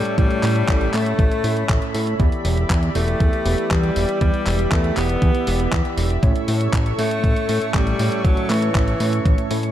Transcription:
Already playing: A2 G3 A3 C#4 E4 A4 C#5 E5 C#6
0.05 closed hi-hat
0.18 A1 A2 G3 A3 C#4 E4 C#5 B5, kick, closed hi-hat
0.31 closed hi-hat
0.43 A2, clap, open hi-hat
0.56 closed hi-hat
0.68 A1, kick, clap, closed hi-hat
0.81 closed hi-hat
0.94 A2 A3 C#4 E4 C#5, clap, open hi-hat
1.06 closed hi-hat
1.19 A1, kick, closed hi-hat
1.31 closed hi-hat
1.44 A2 A3 C#4 E4 C#5, open hi-hat
1.57 closed hi-hat
1.69 A1, kick, clap, closed hi-hat
1.82 closed hi-hat
1.94 A2, open hi-hat
2.07 closed hi-hat
2.20 E2 E3 B3 E4 G4 D5 E5, kick, closed hi-hat
2.32 closed hi-hat
2.45 E1, open hi-hat
2.57 closed hi-hat
2.70 E2, kick, clap, closed hi-hat
2.83 closed hi-hat
2.95 E1 E3 A3 B3 E4 G4 D5, open hi-hat
3.08 closed hi-hat
3.20 E2, kick, closed hi-hat
3.33 closed hi-hat
3.46 E1 E3 B3 E4 G4 D5, open hi-hat
3.58 closed hi-hat
3.71 E2 G3, kick, clap, closed hi-hat
3.83 closed hi-hat
3.96 E1, open hi-hat
4.09 closed hi-hat
4.21 E2 E3 G3 B3 E4 G4 D5, kick, closed hi-hat
4.34 closed hi-hat
4.46 E1, clap, open hi-hat
4.59 closed hi-hat
4.72 E2 A3, kick, clap, closed hi-hat
4.84 closed hi-hat
4.97 E1 E3 B3 E4 G4 D5, clap, open hi-hat
5.09 closed hi-hat
5.22 E2, kick, closed hi-hat
5.35 closed hi-hat
5.47 E1 E3 B3 E4 G4 D5, open hi-hat
5.60 closed hi-hat
5.72 E2, kick, clap, closed hi-hat
5.85 closed hi-hat
5.98 E1, open hi-hat
6.10 closed hi-hat
6.23 A1 A2 A3 C#4 E4 A4 C#5 C#6, kick, closed hi-hat
6.36 closed hi-hat
6.48 A2, open hi-hat
6.61 closed hi-hat
6.73 A1, kick, clap, closed hi-hat
6.86 closed hi-hat
6.99 A2 A3 C#4 E4 C#5, open hi-hat
7.11 closed hi-hat
7.24 A1, kick, closed hi-hat
7.36 closed hi-hat
7.49 A2 A3 C#4 E4 C#5, open hi-hat
7.62 closed hi-hat
7.74 A1 G3, kick, clap, closed hi-hat
7.87 closed hi-hat
7.99 A2, open hi-hat
8.12 closed hi-hat
8.25 A1 A2 F#3 A3 C#4 E4 C#5, kick, closed hi-hat
8.37 closed hi-hat
8.50 A2 E3, clap, open hi-hat
8.62 closed hi-hat
8.75 A1, kick, clap, closed hi-hat
8.88 closed hi-hat
9.00 A2 A3 C#4 E4 C#5, open hi-hat
9.13 closed hi-hat
9.26 A1, kick, closed hi-hat
9.38 closed hi-hat
9.51 A2 A3 C#4 E4 C#5, open hi-hat
9.63 closed hi-hat

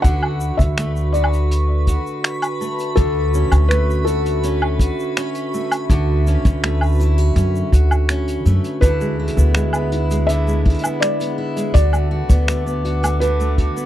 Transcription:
Already playing: A3 C#4 F#4 B4 B5 C#6
0.02 D2 D3 F#4 F#5, kick, closed hi-hat, shaker
0.23 low woodblock
0.41 shaker
0.57 D2 E5, kick, closed hi-hat, shaker
0.77 A3, finger snap, closed hi-hat, shaker
0.96 shaker
1.12 F#4 D5, closed hi-hat, shaker
1.24 low woodblock
1.33 closed hi-hat, shaker
1.51 closed hi-hat, shaker
1.87 F#4, kick, closed hi-hat, shaker
2.07 shaker
2.24 finger snap, closed hi-hat, shaker
2.42 closed hi-hat, low woodblock, shaker
2.61 A3, shaker
2.79 closed hi-hat, shaker
2.96 D2 D3 F#4 A4 E5, kick, closed hi-hat, shaker
3.34 C#4, shaker
3.52 D2, closed hi-hat, low woodblock, shaker
3.68 A3 B4, finger snap, closed hi-hat, shaker
3.90 shaker
4.05 F#4 A4, closed hi-hat, shaker
4.26 closed hi-hat, shaker
4.43 C#4, closed hi-hat, shaker
4.62 low woodblock
4.79 F#4, kick, closed hi-hat, shaker
4.99 shaker
5.17 C#4, finger snap, closed hi-hat, shaker
5.35 closed hi-hat, shaker
5.54 A3, shaker
5.71 closed hi-hat, low woodblock, shaker
5.90 D2 D3 F#4, kick, closed hi-hat, shaker
6.27 C#4, closed hi-hat, shaker
6.45 D2, kick, closed hi-hat, shaker
6.63 A3, finger snap, closed hi-hat
6.81 low woodblock, shaker
6.86 shaker
6.89 shaker
6.92 shaker
6.95 shaker
6.98 E4, closed hi-hat, shaker
7.01 shaker
7.18 F#4, closed hi-hat, shaker
7.36 F#2 C#4, closed hi-hat, shaker
7.55 shaker
7.72 D2 F#4, kick, closed hi-hat, shaker
7.91 low woodblock, shaker
8.09 C#4, finger snap, closed hi-hat, shaker
8.28 closed hi-hat, shaker
8.45 F#2 A3, closed hi-hat, shaker
8.64 closed hi-hat, shaker
8.81 D2 D3 E4 G#4 B4 E5 B5, kick, closed hi-hat, shaker
9.01 G#3, shaker
9.20 E4
9.28 closed hi-hat
9.37 D2 B3, shaker
9.55 G#3, finger snap, closed hi-hat, shaker
9.73 B3, low woodblock, shaker
9.92 E4, closed hi-hat
10.11 G#3, closed hi-hat, shaker
10.27 D3 E4 E5, closed hi-hat, shaker
10.47 G#3, shaker
10.65 E4, kick, closed hi-hat
10.70 closed hi-hat
10.74 closed hi-hat
10.79 closed hi-hat
10.84 B3, low woodblock, shaker
11.00 G#3 D5, finger snap, closed hi-hat, shaker
11.20 B3, closed hi-hat, shaker
11.38 E4
11.57 G#3, closed hi-hat, shaker
11.74 D2 D3 F#4 B4 D5 F#5 D6, kick, closed hi-hat, shaker
11.93 A3, low woodblock, shaker
12.11 F#4
12.29 D2 B3, kick, closed hi-hat, shaker
12.48 A3, finger snap, closed hi-hat, shaker
12.66 B3, shaker
12.85 F#4, closed hi-hat
13.03 A3, closed hi-hat, low woodblock, shaker
13.20 D3 F#4 B4, closed hi-hat, shaker
13.40 A3, shaker
13.58 F#4, kick, closed hi-hat
13.76 B3, shaker

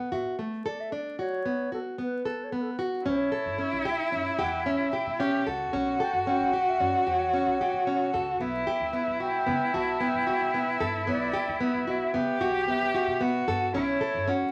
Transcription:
Already playing: F#5
0.12 A2 F#4 E5
0.39 A3
0.66 A4 D5
0.80 E5
0.92 D4 D5
1.12 D5
1.19 F#4 C#5
1.46 B3
1.72 F#4 A4
1.98 B3 B4
2.25 A4
2.44 C#5
2.52 B3 B4
2.62 A4
2.71 B4
2.79 F#4
3.05 B1 C#4 E4 C#5
3.32 A4
3.46 G1
3.58 C#4
3.73 B1
3.85 G4 E5
4.12 F#2 C#4
4.39 E2 G4 F#5
4.65 C#4 E5
4.80 B1
4.93 G4
5.06 B2
5.19 C#4 G4
5.46 C#2 F#4 A4
5.73 B1 C#4
6.00 A4 G5
6.13 G1 F#5
6.27 C#4 G5
6.39 B1
6.53 G4 F#5
6.68 E5
6.80 F#2 C#4 D5
7.06 E2 G4 C#5
7.34 C#4
7.46 B1
7.61 G4
7.73 B2
7.87 C#4
8.13 C#2 A4
8.34 F#5
8.40 B1 B3 E4 E5
8.67 G4
8.80 D2
8.93 B3
9.07 B1
9.20 F#4 G5
9.46 C#3 B3
9.74 B1 F#4 A5
10.00 B3 G5
10.14 B1
10.27 F#4
10.41 B2
10.54 B3
10.80 G2 A4
11.07 B1 B3 D5
11.33 G4
11.47 D2
11.60 B3
11.74 B1
11.87 F#4 E5
12.14 C#3 B3 G4
12.40 B1 F#4
12.56 F#5
12.68 B3 E5
12.81 B1
12.95 F#4
13.07 B2
13.21 B3 F#4
13.48 G2 A4
13.74 B1 C#4 E4 C#5
14.01 A4
14.15 G1
14.28 C#4 F#4
14.42 B1

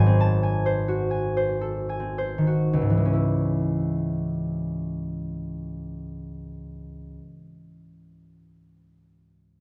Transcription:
Already playing: G#1 G#2 C5
0.00 G#5
0.06 C4
0.20 A5
0.43 G#5
0.66 C5
0.88 F#4
1.11 G#5
1.37 C5
1.61 A4
1.89 G#5
2.00 C4
2.18 C5
2.38 D#3
2.47 F#4
2.73 C#2
2.81 G#2
2.90 E3
2.97 G#3
3.05 C#4
3.13 E4

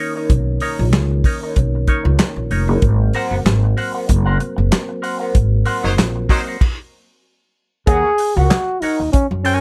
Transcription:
Already playing: D#3 A#3 C#4
0.00 D#4 A#4 C#5
0.16 D#4 A#4 C#5
0.30 B1, kick, closed hi-hat
0.60 D#4 A#4 C#5, open hi-hat
0.79 A#1
0.93 C#2, muted clean electric guitar stroke, snare, clap, closed hi-hat
1.11 muted clean electric guitar stroke
1.24 D#4 A#4 C#5, kick, open hi-hat
1.43 D#4 A#4 C#5
1.56 B1, kick, closed hi-hat
1.75 muted clean electric guitar stroke
1.87 D#4 A#4 C#5, kick, closed hi-hat
2.05 C#2, muted clean electric guitar stroke
2.19 muted clean electric guitar stroke, snare, clap, closed hi-hat
2.36 A#1, muted clean electric guitar stroke
2.51 F1 D#4 A#4 C#5, open hi-hat
2.68 F#1 D#4 A#4 C#5
2.82 G#1 F#3 A#3 C4, kick, closed hi-hat
3.13 A#4 C5 F#5, open hi-hat
3.31 F#1
3.45 G#1, muted clean electric guitar stroke, snare, clap, closed hi-hat
3.64 muted clean electric guitar stroke
3.77 A#4 C5 F#5, open hi-hat
3.95 A#4 C5 F#5
4.08 F#1, muted clean electric guitar stroke, kick, closed hi-hat
4.26 A#4 C5 F#5
4.40 muted clean electric guitar stroke, closed hi-hat
4.57 F#1, muted clean electric guitar stroke
4.71 muted clean electric guitar stroke, snare, clap, closed hi-hat
4.89 muted clean electric guitar stroke
5.02 A#4 C5 F#5, open hi-hat
5.20 A#4 C5 F#5
5.35 G#1, kick, closed hi-hat
5.65 A#4 C5 F#5, open hi-hat
5.83 F#1 F#3 D#4 C5
5.97 A#1, muted clean electric guitar stroke, snare, clap, closed hi-hat
6.16 muted clean electric guitar stroke
6.29 F#3 D#4 A#4 C5 F#5, kick, open hi-hat
6.47 A#4 C5 F#5
6.61 kick, crash
7.87 D#2 G#4 A#4 C#5 F#5, kick, closed hi-hat
8.18 muted clean electric guitar stroke, open hi-hat
8.36 C#2 F#4 A#4 C#5 F#5
8.50 muted clean electric guitar stroke, snare, clap, closed hi-hat
8.81 D#4 A#4 C#5 F#5, muted upright bass stroke, open hi-hat
9.00 D#2, muted clean electric guitar stroke
9.12 C#4, muted clean electric guitar stroke, muted upright bass stroke, kick, closed hi-hat
9.31 F#2, muted clean electric guitar stroke
9.44 C#4 A#4 C#5 G#5, open hi-hat

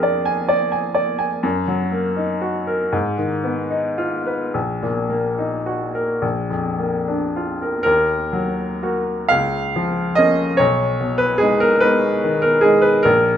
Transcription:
Already playing: F2 F3 A#3 D4 G#4 A#4
0.03 D5
0.25 G#5
0.49 D5
0.72 G#5
0.95 D5
1.19 G#5
1.43 F#2
1.68 F#3
1.92 A#3
2.17 D#4
2.41 F#4
2.67 A#4
2.92 G#2
3.18 D#3
3.44 B3
3.70 D#4
3.98 F4
4.26 B4
4.54 A#1
4.83 A#2
5.10 A#3
5.38 D#4
5.66 F#4
5.95 A#4
6.22 A#1
6.50 F2
6.79 A#3
7.08 D4
7.36 F4
7.62 A#4
7.83 D#2 A#4
8.33 F#3
8.83 A#3 F#4
9.28 C#2 F5
9.76 F3
10.15 A#3 C#4 D#5
10.57 B1 C#5
11.00 B2
11.18 B4
11.38 G#3 D#4 G#4
11.60 A#4
11.80 G#3 D#4 B4
12.24 D#3
12.42 A#4
12.61 G#3 D#4 G#4
12.82 B4
13.03 A#1 A#4

